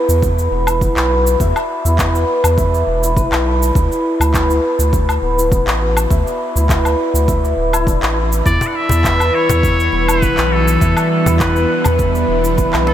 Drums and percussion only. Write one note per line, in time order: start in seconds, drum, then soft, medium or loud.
0.09 cabasa medium
0.23 kick loud
0.23 cabasa soft
0.39 cabasa soft
0.67 cabasa medium
0.67 low woodblock medium
0.81 kick loud
0.81 cabasa medium
0.97 clap medium
0.97 cabasa soft
1.27 cabasa medium
1.40 kick loud
1.40 cabasa medium
1.56 cabasa soft
1.56 low woodblock medium
1.86 cabasa medium
1.99 kick medium
1.99 clap medium
1.99 cabasa medium
2.15 cabasa soft
2.44 cabasa medium
2.44 low woodblock medium
2.58 kick loud
2.58 cabasa medium
2.74 cabasa soft
3.03 cabasa medium
3.17 kick loud
3.17 cabasa medium
3.32 clap medium
3.32 cabasa soft
3.32 low woodblock medium
3.62 cabasa medium
3.75 kick loud
3.75 cabasa medium
3.92 cabasa soft
4.21 cabasa medium
4.21 low woodblock medium
4.34 kick loud
4.34 clap medium
4.34 cabasa medium
4.50 cabasa soft
4.80 cabasa medium
4.93 kick loud
4.93 cabasa medium
5.09 cabasa soft
5.09 low woodblock medium
5.39 cabasa medium
5.52 kick loud
5.52 cabasa medium
5.68 clap medium
5.68 cabasa soft
5.97 cabasa medium
5.97 low woodblock medium
6.11 kick loud
6.11 cabasa medium
6.27 cabasa soft
6.56 cabasa medium
6.69 kick loud
6.69 clap medium
6.69 cabasa medium
6.85 cabasa soft
6.85 low woodblock medium
7.15 cabasa medium
7.28 kick loud
7.28 cabasa medium
7.45 cabasa soft
7.73 cabasa medium
7.73 low woodblock medium
7.87 kick loud
7.87 cabasa medium
8.03 clap medium
8.03 cabasa soft
8.32 cabasa medium
8.46 kick loud
8.46 cabasa medium
8.61 cajon bass medium
8.61 cabasa soft
8.89 cajon bass medium
8.89 cabasa medium
9.05 kick medium
9.05 clap medium
9.05 cabasa medium
9.20 cajon slap soft
9.20 cabasa soft
9.20 low woodblock medium
9.49 cajon bass loud
9.49 cabasa medium
9.63 kick loud
9.63 cabasa soft
9.80 cabasa soft
9.92 cajon slap soft
10.08 cabasa medium
10.08 low woodblock medium
10.22 kick loud
10.22 cabasa medium
10.38 cajon slap medium
10.38 clap medium
10.38 cabasa soft
10.68 cabasa medium
10.81 kick loud
10.81 cabasa medium
10.97 cabasa soft
10.97 low woodblock medium
11.26 cajon bass medium
11.26 cabasa medium
11.40 kick loud
11.40 clap medium
11.40 cabasa medium
11.56 cabasa soft
11.84 cajon bass medium
11.84 cabasa medium
11.84 low woodblock medium
11.99 kick loud
11.99 cabasa medium
12.15 cabasa soft
12.44 cabasa medium
12.58 kick loud
12.58 cabasa medium
12.73 clap medium
12.73 cabasa soft
12.73 low woodblock medium
12.87 cajon slap medium